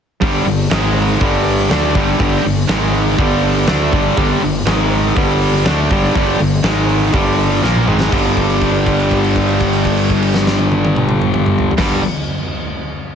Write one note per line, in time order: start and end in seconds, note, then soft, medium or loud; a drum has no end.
0.22 0.45 G1 loud
0.22 0.46 G2 medium
0.22 0.46 D3 medium
0.22 0.46 G3 loud
0.22 kick loud
0.22 open hi-hat medium
0.46 0.69 G1 medium
0.46 0.67 G2 medium
0.46 0.67 D3 medium
0.46 open hi-hat medium
0.71 1.17 G#1 loud
0.71 1.21 G#2 medium
0.71 1.21 D#3 medium
0.71 1.21 G#3 loud
0.71 snare loud
0.71 open hi-hat medium
0.96 open hi-hat medium
1.21 1.67 G1 medium
1.21 1.71 G2 medium
1.21 1.70 D3 loud
1.21 1.71 G3 loud
1.21 kick loud
1.21 open hi-hat medium
1.46 open hi-hat medium
1.69 1.93 D2 loud
1.69 1.95 D3 medium
1.69 1.95 A3 medium
1.69 1.95 D4 loud
1.69 snare loud
1.69 open hi-hat medium
1.95 2.18 G1 loud
1.95 2.19 G2 medium
1.95 2.19 D3 medium
1.95 2.20 G3 medium
1.95 kick loud
1.95 open hi-hat medium
2.20 2.43 G1 loud
2.20 2.44 G2 loud
2.20 2.44 D3 loud
2.20 2.44 G3 loud
2.20 kick medium
2.20 open hi-hat medium
2.44 2.67 G1 medium
2.44 2.65 G2 medium
2.44 2.65 D3 medium
2.44 open hi-hat medium
2.69 3.15 G#1 loud
2.69 3.18 G#2 loud
2.69 3.19 D#3 medium
2.69 3.19 G#3 loud
2.69 snare loud
2.69 open hi-hat medium
2.94 open hi-hat medium
3.19 3.65 G1 loud
3.19 3.68 G2 medium
3.19 3.68 D3 loud
3.19 3.68 G3 loud
3.19 kick loud
3.19 open hi-hat medium
3.43 open hi-hat medium
3.68 3.91 D2 loud
3.68 3.92 D3 medium
3.68 3.92 A3 medium
3.68 3.93 D4 loud
3.68 snare loud
3.68 open hi-hat medium
3.93 4.16 G1 loud
3.93 4.16 G2 medium
3.93 4.17 D3 medium
3.93 4.17 G3 loud
3.93 kick medium
3.93 open hi-hat medium
4.17 4.40 G1 loud
4.17 4.41 G2 medium
4.17 4.42 D3 loud
4.17 4.42 G3 loud
4.17 kick loud
4.17 open hi-hat medium
4.42 4.65 G1 medium
4.42 4.62 G2 medium
4.42 4.62 D3 medium
4.42 open hi-hat medium
4.66 5.12 G#1 loud
4.66 5.15 G#2 loud
4.66 5.16 D#3 loud
4.66 5.16 G#3 loud
4.66 snare loud
4.66 open hi-hat medium
4.92 open hi-hat medium
5.17 5.62 G1 loud
5.17 5.65 G2 loud
5.17 5.65 D3 medium
5.17 5.66 G3 loud
5.17 kick loud
5.17 open hi-hat medium
5.42 open hi-hat medium
5.54 snare soft
5.66 5.89 D2 loud
5.66 5.90 D3 medium
5.66 5.91 A3 loud
5.66 5.91 D4 loud
5.66 snare loud
5.66 open hi-hat medium
5.91 6.13 G1 medium
5.91 6.14 G2 medium
5.91 6.15 D3 medium
5.91 6.15 G3 medium
5.91 kick medium
5.91 open hi-hat medium
6.15 6.38 G1 loud
6.15 6.39 G2 medium
6.15 6.40 D3 loud
6.15 6.40 G3 loud
6.15 kick medium
6.15 open hi-hat medium
6.40 6.63 G1 medium
6.40 6.60 G2 medium
6.40 6.60 D3 medium
6.40 open hi-hat medium
6.64 7.10 G#1 loud
6.64 7.13 G#2 medium
6.64 7.13 D#3 loud
6.64 7.13 G#3 loud
6.64 snare loud
6.64 open hi-hat medium
6.89 open hi-hat medium
7.14 7.59 G1 medium
7.14 7.62 G2 loud
7.14 7.62 D3 medium
7.14 7.63 G3 loud
7.14 kick loud
7.14 open hi-hat medium
7.39 open hi-hat medium
7.62 7.85 A#1 loud
7.62 7.86 A#2 medium
7.62 7.87 F3 medium
7.62 7.87 A#3 loud
7.62 snare medium
7.76 mid tom medium
7.86 8.10 G#1 loud
7.86 8.10 G#2 medium
7.86 8.11 D#3 medium
7.86 8.11 G#3 medium
7.86 mid tom medium
8.00 snare medium
8.10 11.68 G1 loud
8.10 11.71 G2 loud
8.10 11.72 D3 loud
8.10 kick loud
8.10 crash medium
8.15 11.73 G3 loud
8.37 kick medium
8.37 crash soft
8.50 crash medium
8.62 kick medium
8.62 crash soft
8.74 crash soft
8.87 kick medium
8.87 crash soft
9.00 crash soft
9.11 kick medium
9.11 crash soft
9.24 crash medium
9.36 kick medium
9.36 crash soft
9.49 crash soft
9.61 kick medium
9.61 crash soft
9.73 crash soft
9.85 kick medium
9.85 crash soft
9.97 crash medium
10.10 kick medium
10.10 crash soft
10.23 crash medium
10.34 snare medium
10.47 snare loud
10.59 high tom medium
10.72 high tom loud
10.85 high tom loud
10.96 mid tom loud
11.09 mid tom loud
11.22 mid tom medium
11.34 mid tom loud
11.46 mid tom loud
11.58 floor tom medium
11.71 floor tom medium
11.78 11.99 G1 medium
11.78 12.00 G2 medium
11.78 12.01 D3 loud
11.78 kick loud
11.78 snare medium
11.78 crash loud
11.82 12.02 G3 loud